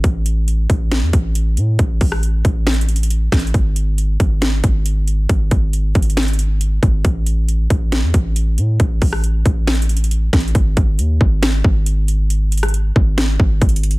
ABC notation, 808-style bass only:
X:1
M:4/4
L:1/16
Q:1/4=137
K:Alyd
V:1 name="808-style bass" clef=bass
A,,,6 A,,,3 E,, A,,,4 A,,2 | A,,,2 A,,,4 A,,,8 A,,,2 | G,,,6 G,,,4 G,,,6 | G,,,2 G,,,4 G,,,8 G,,,2 |
A,,,6 A,,,3 E,, A,,,4 A,,2 | A,,,2 A,,,4 A,,,8 A,,,2 | G,,,2 G,,,2 D,,2 G,,,4 G,,,6- | G,,,6 G,,,4 G,,,2 G,,,4 |]